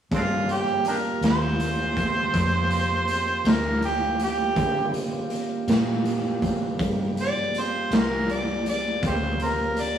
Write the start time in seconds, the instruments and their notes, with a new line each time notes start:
0.11 fingered electric bass G2, tonewheel organ A#3 F4 G4, harmonica C4 D4 F4, kick, closed hi-hat
0.49 harmonica G4, closed hi-hat
0.85 harmonica D4 G4 A#4, closed hi-hat
1.21 fingered electric bass D#2, snare, closed hi-hat
1.26 harmonica C5
1.60 closed hi-hat
1.97 kick, closed hi-hat
2.34 fingered electric bass F2, kick, closed hi-hat
2.70 closed hi-hat
3.08 closed hi-hat
3.45 fingered electric bass D2, harmonica A#4, snare, closed hi-hat
3.82 harmonica G4, closed hi-hat
4.19 closed hi-hat
4.24 harmonica G4
4.55 fingered electric bass D3, tonewheel organ A#3 F4 G4, kick, closed hi-hat
4.94 closed hi-hat
5.30 closed hi-hat
5.67 fingered electric bass A#2, snare, closed hi-hat
6.05 closed hi-hat
6.42 kick, closed hi-hat
6.79 fingered electric bass G2, kick, closed hi-hat
7.17 harmonica D5, closed hi-hat
7.54 closed hi-hat
7.59 harmonica C5
7.90 fingered electric bass C2, snare, closed hi-hat
7.96 harmonica A#4
8.29 harmonica D5, closed hi-hat
8.66 harmonica D5, closed hi-hat
9.01 fingered electric bass D2, tonewheel organ A#3 F4 G4, kick, closed hi-hat
9.07 harmonica G4 C5
9.40 harmonica A#4, closed hi-hat
9.77 harmonica D5, closed hi-hat